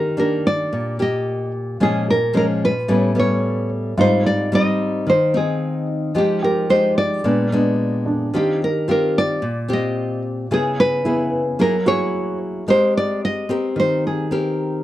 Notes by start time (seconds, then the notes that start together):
Already playing: D#3 A#4
0.17 A#3 D4 G4 A#4
0.47 D5
0.73 A#2
0.99 A#3 G4 D#5
1.80 A#2 F3 G#3 C#4 G#4
2.10 A#4
2.33 F3 G#3 C#4 A#4
2.65 B4
2.88 A2 G3 B3 C#4
3.15 G3 B3 C#4
3.19 C#5
3.98 G#2 G3 C4 D#4 F4 C5
4.26 D5
4.52 G3 C4 D#4 D#5
5.07 D#3 C5
5.34 C4 D#4 G#4
6.15 F3 G#3 D#4 G4
6.43 G4 A#4
6.70 G#3 D#4 G4 C5
6.98 D5
7.24 A#2 G#3 B3 D4
7.52 G#3 B3 D4
8.06 D4
8.34 D#3 C4 F4 G4
8.64 A#4
8.88 C4 F4 G4 A#4
9.18 D5
9.42 A#2
9.68 C4 F4 G4
9.73 D#5
10.51 C#3 B3 E4 G#4
10.80 B4
11.04 B3 E4 G#4
11.59 F#3 A#3 E4 G#4 A#4
11.86 A#3 E4 F#4 G#4 C#5
12.68 G#3 C4 G4 A#4 C5
12.97 D5
13.25 D#5
13.49 C4 G4 A#4
13.76 D#3 C5
14.07 G#4
14.31 C4 G4 A#4